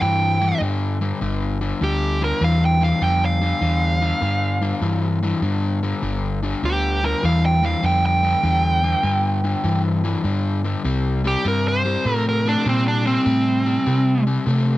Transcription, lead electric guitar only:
0.02 G5
1.83 G4
2.24 A#4
2.44 F5
2.65 G5
2.84 F5
3.04 G5
3.25 F5
6.65 G4
7.06 A#4
7.25 F5
7.46 G5
7.66 F5
7.86 G5
8.06 G5
11.27 G4
11.48 A#4
11.68 C5
12.14 A#4
12.29 A#4
12.48 D4
12.69 C4
12.88 D4
13.07 C4

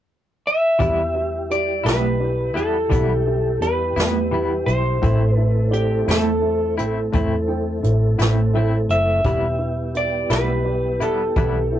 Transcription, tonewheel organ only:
0.80 G3 E4 G4
5.02 A3 C4 E4 A4
9.25 G3 B3 G4

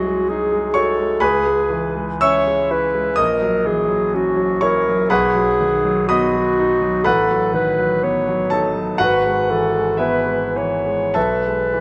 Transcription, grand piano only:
Already playing: C2 F#3 G#3 D#5 C6 D#6
0.07 G#3
0.30 D#4
0.52 G#3
0.74 F#4 C#5 C#6
0.99 G#3
1.20 C#2 B4 G#5 B5
1.46 G#3
1.70 E3
1.96 G#3
2.21 C#4 E5 C#6 E6
2.47 G#3
2.71 E4
2.94 G#3
3.16 A#1 D#5 D#6
3.42 F#3
3.65 E3
3.88 F#3
4.14 C#4
4.36 F#3
4.61 E4 C#5 C#6
4.88 F#3
5.10 B1 B4 F#5 B5
5.35 F#3
5.60 D#3
5.85 F#3
6.09 B3 D#5 B5 D#6
6.34 F#3
6.59 D#4
6.82 F#3
7.04 A1 B4 F#5 B5
7.30 F#3
7.54 D#3
7.79 F#3
8.03 B3
8.28 F#3
8.50 D#4 A4 A5
8.76 F#3
8.98 G#1 F#4 B4 F#5
9.26 G#3
9.49 E3
9.73 G#3
9.97 B3 E4 B4 E5
10.26 G#3
10.56 E3
10.86 G#3
11.14 B1 A4 E5 A5
11.46 G#3
11.74 E3

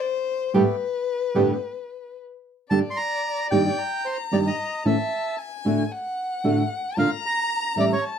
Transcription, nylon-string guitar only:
0.54 G2 A2 D3 G3 B3 G4
1.35 G2 A2 D3 G3 B3 G4
2.71 G2 D3 G3 A#3 D4 G4
3.51 G2 D#3 G3 A#3 D#4 G4
4.32 G2 D#3 G3 A#3 D#4 G4
4.85 A2 E3 A3 C#4 E4
5.65 A2 D3 A3 D4 F#4
6.44 A2 D3 A3 D4 F#4
6.97 A#2 D3 A#3 D4 F4
7.76 A2 E3 G3 C#4 E4

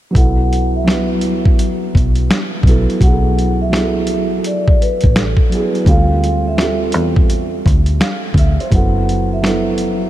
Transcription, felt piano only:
0.11 F#3 B3
0.15 E4 A4
0.84 F#3 B3
0.88 E4 B4
2.63 F#3 B3 E4
2.69 A4
3.00 F#3 B3
3.04 E4 G#4
3.12 A4
3.69 F#3 B3 E4
3.76 G#4
3.82 A4
5.49 F#3 B3
5.54 E4 G#4
5.85 G3 C4
5.89 F4 A4
6.57 G3 C4
6.61 F4 A4
8.01 F5
8.39 E5
8.61 C5
8.70 F#3 B3 E4
8.76 A4
9.42 F#3 B3
9.46 E4 A4

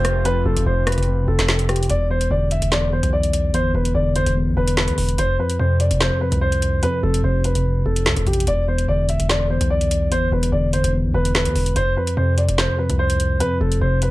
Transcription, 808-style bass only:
Already playing: F1
0.46 F1
0.57 F1
0.66 F1
0.98 F1
1.18 E1
1.28 F1
1.39 F1
1.89 E1
2.31 E1
2.62 E1
3.03 B1
3.54 G1
3.75 E1
3.95 E1
4.16 G1
4.27 E1
4.47 B1
4.57 E1
4.88 E2
4.98 E1
5.18 F1
5.59 F2
5.91 F1
6.32 C2
6.83 F2
7.03 F1
7.24 F1
7.55 F1
7.76 E1
7.86 F1
8.06 C2
8.17 F1
8.27 A1
8.47 E1
8.88 E1
9.20 E1
9.61 B1
10.12 G1
10.32 E1
10.53 E1
10.73 G1
10.84 E1
11.05 B1
11.14 E1
11.46 E2
11.55 E1
11.76 F1
12.17 F2
12.49 F1
12.90 C2
13.40 F2
13.61 F1
13.81 F1

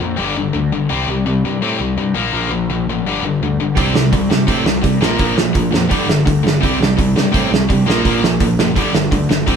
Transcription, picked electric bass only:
0.01 F2
0.19 G1
0.37 G1
0.55 D2
0.72 G1
0.90 C2
1.08 C2
1.26 C2
1.43 G2
1.61 A2
1.80 C2
1.97 G2
2.15 A#1
2.33 A#1
2.50 A#1
2.69 A#1
2.87 A1
3.05 G1
3.23 G1
3.41 D2
3.59 G1
3.77 C2
3.93 C2
4.13 C2
4.29 G2
4.48 A2
4.65 C2
4.84 G2
5.01 A#1
5.19 A#1
5.37 A#1
5.55 A#1
5.73 F2
5.91 G1
6.10 G1
6.27 D2
6.44 G1
6.63 C2
6.80 C2
6.98 C2
7.16 G2
7.34 A2
7.51 C2
7.70 G2
7.88 A#1
8.05 A#1
8.22 A#1
8.40 A#1
8.59 F#1
8.76 G1
8.94 G1
9.12 D2
9.30 G1
9.48 C2

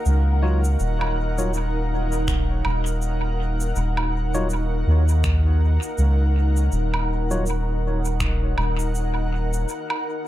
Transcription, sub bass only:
0.06 C#2
0.80 D#1
2.65 D#1
3.76 D#1
4.87 D#2
5.98 C#2
6.72 D#1
8.57 D#1

